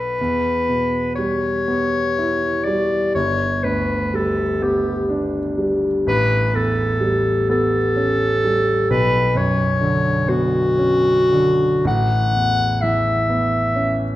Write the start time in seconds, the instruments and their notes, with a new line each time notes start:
Already playing: grand piano B1 F#3 B3 D4 A4, clarinet B4
0.21 grand piano E2
0.69 grand piano B2
1.15 grand piano G3, clarinet C#5
1.68 grand piano B3
2.18 grand piano E4
2.64 grand piano G3, clarinet D5
3.15 grand piano G1, clarinet C#5
3.64 grand piano D2, clarinet B4
4.14 grand piano G3, clarinet A4
4.62 grand piano B3, clarinet G4
5.09 grand piano D4
5.58 grand piano G3
6.07 grand piano A1, clarinet B4
6.54 grand piano E2, clarinet A4
7.01 grand piano G3
7.49 grand piano B3, clarinet A4
7.97 grand piano C#4
8.44 grand piano G3
8.90 grand piano B1, clarinet B4
9.35 grand piano F#2, clarinet C#5
9.81 grand piano D3
10.28 grand piano B3, clarinet F#4
10.79 grand piano C#4
11.32 grand piano D3
11.85 grand piano A1, clarinet F#5
12.35 grand piano E2
12.81 grand piano E3, clarinet E5
13.30 grand piano B3
13.76 grand piano C#4